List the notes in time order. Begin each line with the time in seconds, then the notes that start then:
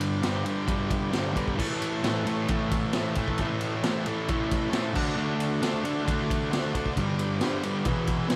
Already playing: G2 D3 G3 G4 B4 D5
0.01 ride
0.23 G2 D3 G3, snare, ride
0.45 G2 D3 G3, ride
0.67 G2 D3 G3, kick, ride
0.90 kick, ride
1.11 G2 D3 G3, snare, ride
1.33 G2 D3 G3, kick, ride
1.48 kick
1.56 A2 E3 A3 E4 A4 C#5, kick, crash
1.82 ride
2.03 A2 E3 A3, snare, ride
2.26 A2 E3 A3, ride
2.48 A2 E3 A3, kick, ride
2.71 kick, ride
2.93 A2 E3 A3, snare, ride
3.15 A2 E3 A3, kick, ride
3.28 kick
3.38 A2 E3 A3, kick, ride
3.61 ride
3.83 A2 E3 A3, snare, ride
4.06 A2 E3 A3, ride
4.28 A2 E3 A3, kick, ride
4.50 B5, kick, ride
4.71 A2 E3 A3 A5, snare, ride
4.93 D3 A3 D4 F#4 A4 D5 F#5, kick, crash
5.16 D3 A3 D4
5.40 ride
5.61 D3 A3 D4, snare, ride
5.85 D3 A3 D4, ride
6.05 D3 A3 D4, kick, ride
6.30 kick, ride
6.51 D3 A3 D4, snare, ride
6.73 D3 A3 D4, kick, ride
6.86 kick
6.96 G2 D3 G3, kick, ride
7.00 G4 B4 D5
7.19 ride
7.41 G2 D3 G3, snare, ride
7.63 G2 D3 G3, ride
7.84 E2 B2 E3 G#4 B4 E5, kick, ride
8.07 kick, ride
8.29 E2 B2 E3 G#5, snare, ride